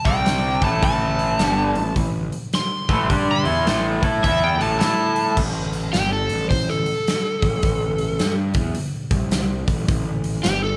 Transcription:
0.05 0.58 C2 medium
0.05 0.61 C3 medium
0.05 0.61 G3 loud
0.05 0.61 C4 medium
0.05 0.62 G5 medium
0.05 kick loud
0.05 open hi-hat soft
0.26 snare loud
0.26 open hi-hat medium
0.62 0.82 A1 medium
0.62 0.81 A2 medium
0.62 0.82 E3 loud
0.62 0.82 A3 loud
0.62 0.83 A5 medium
0.62 kick loud
0.62 open hi-hat soft
0.82 1.36 A1 medium
0.82 1.39 A2 loud
0.82 1.39 E3 loud
0.82 1.39 A3 loud
0.82 1.94 A5 loud
0.82 kick loud
0.82 open hi-hat medium
1.19 open hi-hat soft
1.39 1.73 G1 loud
1.39 1.74 G2 loud
1.39 1.75 D3 medium
1.39 1.75 G3 loud
1.39 snare loud
1.39 open hi-hat medium
1.75 1.95 A1 medium
1.75 1.92 A2 medium
1.75 1.92 E3 medium
1.75 open hi-hat soft
1.96 2.30 A1 medium
1.96 2.25 A2 medium
1.96 2.25 E3 medium
1.96 kick medium
1.96 open hi-hat medium
2.32 open hi-hat soft
2.53 3.27 C6 medium
2.53 snare loud
2.53 open hi-hat medium
2.89 3.09 A1 medium
2.89 3.09 A2 medium
2.89 3.09 E3 loud
2.89 3.09 A3 medium
2.89 kick medium
2.89 open hi-hat soft
3.09 3.43 G2 medium
3.09 3.44 G3 loud
3.09 3.44 D4 loud
3.09 3.45 G4 loud
3.09 kick loud
3.09 open hi-hat medium
3.31 3.85 C6 medium
3.44 3.65 E2 medium
3.44 3.65 E3 medium
3.44 3.65 B3 medium
3.44 3.66 E4 medium
3.44 open hi-hat soft
3.66 4.00 A1 medium
3.66 4.01 A2 medium
3.66 4.01 E3 loud
3.66 4.01 A3 medium
3.66 snare loud
3.66 open hi-hat medium
4.02 4.22 A2 medium
4.02 4.22 A3 medium
4.02 4.23 E4 medium
4.02 4.23 A4 medium
4.02 kick loud
4.02 open hi-hat soft
4.23 4.57 E2 medium
4.23 4.58 E3 medium
4.23 4.58 B3 medium
4.23 4.58 E4 medium
4.23 4.42 E5 medium
4.23 kick loud
4.23 open hi-hat medium
4.44 4.61 G5 medium
4.59 4.80 A1 medium
4.59 4.79 A2 medium
4.59 4.79 E3 medium
4.59 4.79 A3 medium
4.59 4.78 A5 medium
4.59 open hi-hat medium
4.79 5.34 A2 medium
4.79 5.36 A3 medium
4.79 5.36 E4 medium
4.79 5.36 A4 medium
4.79 5.35 A5 medium
4.79 snare loud
4.79 open hi-hat medium
5.16 open hi-hat soft
5.37 5.90 A1 medium
5.37 kick loud
5.37 crash loud
5.73 open hi-hat medium
5.93 6.27 G1 medium
5.93 6.11 G4 medium
5.93 snare loud
5.93 open hi-hat medium
6.13 6.49 A4 medium
6.29 6.49 A1 medium
6.29 open hi-hat medium
6.50 6.84 A1 medium
6.50 6.68 C5 medium
6.50 kick medium
6.50 open hi-hat medium
6.69 8.35 A4 medium
6.69 snare soft
6.86 open hi-hat soft
7.08 snare loud
7.08 open hi-hat medium
7.42 8.16 A1 medium
7.42 kick loud
7.42 open hi-hat medium
7.63 kick loud
7.63 open hi-hat medium
7.98 open hi-hat medium
8.19 8.53 G2 medium
8.19 snare loud
8.19 open hi-hat medium
8.54 8.74 E2 medium
8.54 kick loud
8.54 open hi-hat medium
8.75 muted picked electric bass stroke soft
8.75 open hi-hat medium
9.11 9.64 C2 medium
9.11 kick loud
9.11 open hi-hat medium
9.31 snare loud
9.31 open hi-hat medium
9.68 9.87 A1 medium
9.68 kick medium
9.68 open hi-hat medium
9.88 10.41 A1 medium
9.88 kick loud
9.88 open hi-hat medium
10.24 open hi-hat medium
10.43 10.77 G1 medium
10.43 10.62 G4 medium
10.43 snare loud
10.43 open hi-hat medium
10.64 10.77 A4 medium

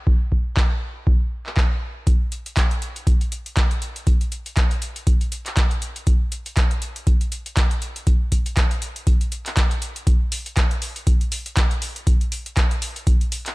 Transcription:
0.07 kick loud
0.32 kick medium
0.57 kick loud
0.57 clap loud
1.07 kick loud
1.46 clap soft
1.57 kick loud
1.57 clap loud
2.07 kick loud
2.07 closed hi-hat medium
2.32 closed hi-hat medium
2.46 closed hi-hat soft
2.57 kick loud
2.57 clap loud
2.57 closed hi-hat medium
2.71 closed hi-hat soft
2.82 closed hi-hat medium
2.96 closed hi-hat soft
3.07 kick loud
3.07 closed hi-hat medium
3.21 closed hi-hat soft
3.32 closed hi-hat medium
3.46 closed hi-hat soft
3.57 kick loud
3.57 clap loud
3.57 closed hi-hat medium
3.71 closed hi-hat soft
3.82 closed hi-hat medium
3.96 closed hi-hat soft
4.07 kick loud
4.07 closed hi-hat medium
4.21 closed hi-hat soft
4.32 closed hi-hat medium
4.46 closed hi-hat soft
4.57 kick loud
4.57 clap loud
4.57 closed hi-hat medium
4.71 closed hi-hat soft
4.82 closed hi-hat medium
4.96 closed hi-hat soft
5.07 kick loud
5.07 closed hi-hat medium
5.21 closed hi-hat soft
5.32 closed hi-hat medium
5.46 clap soft
5.46 closed hi-hat medium
5.57 kick loud
5.57 clap loud
5.57 closed hi-hat medium
5.71 closed hi-hat soft
5.82 closed hi-hat medium
5.96 closed hi-hat soft
6.07 kick loud
6.07 closed hi-hat medium
6.32 closed hi-hat medium
6.46 closed hi-hat medium
6.57 kick loud
6.57 clap loud
6.57 closed hi-hat medium
6.71 closed hi-hat soft
6.82 closed hi-hat medium
6.96 closed hi-hat medium
7.07 kick loud
7.07 closed hi-hat medium
7.21 closed hi-hat soft
7.32 closed hi-hat medium
7.46 closed hi-hat medium
7.57 kick loud
7.57 clap loud
7.57 closed hi-hat medium
7.71 closed hi-hat soft
7.82 closed hi-hat medium
7.96 closed hi-hat medium
8.07 kick loud
8.07 closed hi-hat medium
8.32 kick medium
8.32 closed hi-hat medium
8.46 closed hi-hat medium
8.57 kick loud
8.57 clap loud
8.57 closed hi-hat medium
8.71 closed hi-hat soft
8.82 closed hi-hat medium
8.96 closed hi-hat medium
9.07 kick loud
9.07 closed hi-hat medium
9.21 closed hi-hat soft
9.32 closed hi-hat medium
9.46 clap soft
9.46 closed hi-hat medium
9.57 kick loud
9.57 clap loud
9.57 closed hi-hat medium
9.71 closed hi-hat soft
9.82 closed hi-hat medium
9.96 closed hi-hat medium
10.07 kick loud
10.07 closed hi-hat medium
10.32 open hi-hat loud
10.46 closed hi-hat medium
10.57 kick loud
10.57 clap loud
10.57 closed hi-hat medium
10.71 closed hi-hat soft
10.82 open hi-hat medium
10.96 closed hi-hat medium
11.07 kick loud
11.07 closed hi-hat medium
11.21 closed hi-hat soft
11.32 open hi-hat loud
11.46 closed hi-hat medium
11.57 kick loud
11.57 clap loud
11.57 closed hi-hat medium
11.71 closed hi-hat soft
11.82 open hi-hat medium
11.96 closed hi-hat medium
12.07 kick loud
12.07 closed hi-hat medium
12.21 closed hi-hat soft
12.32 open hi-hat loud
12.46 closed hi-hat medium
12.57 kick loud
12.57 clap loud
12.57 closed hi-hat medium
12.71 closed hi-hat soft
12.82 open hi-hat loud
12.96 closed hi-hat soft
13.07 kick loud
13.07 closed hi-hat medium
13.21 closed hi-hat soft
13.32 open hi-hat loud
13.46 clap soft
13.46 closed hi-hat medium

